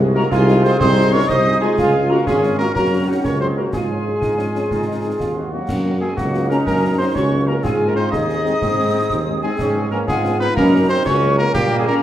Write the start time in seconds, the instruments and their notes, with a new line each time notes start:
Already playing: tuba C2, trombone section G#3
0.15 french horn section G#3 D#4 F#4, euphonium A#3, woodwind section F#4, cornet A#4, flute section A#5
0.31 tuba C2, euphonium G#3, woodwind section D#4, trombone section F4, cornet G#4, flute section G#5, concert bass drum, snare
0.47 french horn section G#3 D#4 F#4, snare
0.63 french horn section G#3 D#4 F#4, euphonium C4, woodwind section G#4, cornet C5, flute section C6, snare
0.79 tuba C2, euphonium C4, trombone section D#4, woodwind section G#4, cornet C5, flute section C6, concert bass drum, snare
0.97 french horn section G#3 D#4 F#4
1.12 french horn section G#3 D#4 F#4, euphonium C#4, woodwind section A#4, cornet C#5, flute section C#6
1.28 tuba C2, euphonium D#4, woodwind section C5, cornet D#5, flute section D#6, concert bass drum, snare
1.46 french horn section G#3 D#4 F#4
1.61 euphonium G#3, french horn section G#3 D#4 F#4, woodwind section F4, cornet G#4, flute section G#5
1.78 tuba C#2, trombone section F4, concert bass drum, snare, crash
1.94 french horn section G#3 C#4 F4
2.09 french horn section G#3 C#4 F4, euphonium A#3, woodwind section F#4, cornet A#4, flute section A#5
2.26 tuba G#1, euphonium G#3, trombone section C#4, woodwind section F4, cornet G#4, flute section G#5, concert bass drum, snare
2.43 french horn section G#3 C#4 F4, snare
2.59 french horn section G#3 C#4 F4, euphonium A#3, woodwind section F#4, cornet A#4, flute section A#5, snare
2.75 tuba F#2, euphonium A#3, trombone section C#4, woodwind section F#4, cornet A#4, flute section A#5, concert bass drum, snare
2.92 french horn section F#3 C#4 F#4
3.07 french horn section F#3 C#4 F#4, euphonium F#3, woodwind section D#4, cornet F#4, flute section F#5
3.24 tuba C#2, euphonium C#4, woodwind section A#4, cornet C#5, flute section C#6, concert bass drum, snare
3.40 french horn section F#3 C#4 F#4, euphonium C4, woodwind section G#4, cornet C5, flute section C6
3.57 french horn section F#3 C#4 F#4, euphonium A#3, woodwind section F#4, cornet A#4, flute section A#5
3.73 tuba G#2, euphonium G#3, trombone section F4, woodwind section F4, cornet G#4, flute section G#5, concert bass drum, snare, crash
3.89 french horn section F3 C#4
4.05 french horn section F3 C#4
4.22 tuba G#2, trombone section D#4, concert bass drum, snare
4.38 french horn section F3 C#4, trombone section C#4, snare
4.54 french horn section F3 C#4, snare
4.71 tuba G#2, trombone section D#4, concert bass drum, snare
4.87 french horn section D#3 C4 D#4, trombone section D#4
5.04 french horn section D#3 C4 D#4
5.19 tuba D#2, trombone section F4, concert bass drum, snare
5.35 french horn section D#3 C4 D#4, trombone section F#4
5.52 french horn section D#3 C4 D#4, euphonium F#3, woodwind section A#3, cornet F#4, flute section F#5
5.69 tuba F#2, concert bass drum, snare, crash
5.84 french horn section A#3 C#4 F#4
6.01 euphonium G#3, french horn section A#3 C#4 F#4, woodwind section C4, cornet G#4, flute section G#5
6.17 tuba C#2, euphonium F#3, woodwind section A#3, trombone section D#4, cornet F#4, flute section F#5, concert bass drum, snare
6.33 french horn section A#3 C#4 F#4, snare
6.49 euphonium A#3, french horn section A#3 C#4 F#4, woodwind section C#4, cornet A#4, flute section A#5, snare
6.66 tuba F#2, euphonium A#3, woodwind section C#4, cornet A#4, flute section A#5, concert bass drum, snare
6.82 french horn section A#3 C#4 F#4
6.98 french horn section A#3 C#4 F#4, euphonium C4, woodwind section D#4, cornet C5, flute section C6
7.15 tuba C#2, trombone section C#4, euphonium C#4, woodwind section F#4, cornet C#5, flute section C#6, concert bass drum, snare
7.31 french horn section A#3 C#4 F#4
7.47 french horn section A#3 C#4 F#4, euphonium A#3, woodwind section C#4, cornet A#4, flute section A#5
7.64 tuba G#2, euphonium G#3, woodwind section C4, trombone section F4, cornet G#4, flute section G#5, concert bass drum, snare, crash
7.80 french horn section G#3 C4 D#4
7.87 euphonium A#3, woodwind section C#4, cornet A#4, flute section A#5
7.95 french horn section G#3 C4 D#4, euphonium C4, woodwind section D#4, cornet C5, flute section C6
8.11 tuba D#2, trombone section D#4, euphonium D#4, woodwind section G#4, cornet D#5, flute section D#6, concert bass drum, snare
8.29 french horn section G#3 C4 D#4, snare
8.44 french horn section G#3 C4 D#4, snare
8.61 tuba G#2, trombone section C4, concert bass drum, snare
8.78 french horn section G#3 C4 D#4
8.94 french horn section G#3 C4 D#4
9.10 tuba D#2, concert bass drum, snare
9.27 french horn section G#3 C4 D#4
9.42 euphonium G#3, french horn section G#3 C4 D#4, woodwind section C4, cornet G#4, flute section G#5
9.59 tuba G#2, trombone section C#4, concert bass drum, snare, crash
9.75 french horn section F3 B3 C#4
9.91 french horn section F3 B3 C#4, euphonium A#3, woodwind section C#4, cornet A#4, flute section A#5
10.07 tuba G#2, euphonium G#3, woodwind section B3, trombone section F4, cornet G#4, flute section G#5, concert bass drum, snare
10.24 french horn section F3 B3 C#4, snare
10.40 french horn section F3 B3 C#4, euphonium B3, woodwind section D#4, cornet B4, flute section B5, snare
10.55 tuba F#2, euphonium A#3, woodwind section C#4, trombone section D#4, cornet A#4, flute section A#5, concert bass drum, snare
10.73 french horn section F#3 A#3 C#4
10.89 french horn section F#3 A#3 C#4, euphonium C4, woodwind section D#4, cornet C5, flute section C6
11.04 tuba C#2, trombone section C#4, euphonium C#4, woodwind section F#4, cornet C#5, flute section C#6, concert bass drum, snare
11.21 french horn section F#3 A#3 C#4
11.37 french horn section F#3 A#3 C#4, euphonium A#3, woodwind section C#4, cornet A#4, flute section A#5
11.54 tuba A#2, euphonium G3, woodwind section A#3, trombone section A#3, cornet G4, flute section G5, concert bass drum, snare, crash
11.70 french horn section D#3 G3 C#4
11.79 euphonium G#3, woodwind section C4, cornet G#4, flute section G#5
11.87 french horn section D#3 G3 C#4, euphonium A#3, woodwind section C#4, cornet A#4, flute section A#5